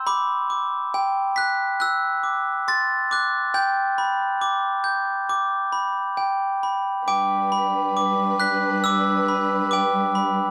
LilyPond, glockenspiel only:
\new Staff \with { instrumentName = "Glockenspiel" } { \time 4/4 \key g \major \tempo 4 = 69 << { d'''4. fis'''8 e'''8 r8 a'''8 fis'''8 | g'''2. r4 | d'''4. fis'''8 e'''4 d'''4 | } \\ { b''8 d'''8 g''8 b'''8 fis'''8 d'''8 c'''8 d'''8 | g''8 b''8 d'''8 g'''8 d'''8 b''8 g''8 b''8 | g''8 b''8 d'''8 b'''8 d'''8 b''8 g''8 b''8 | } >> }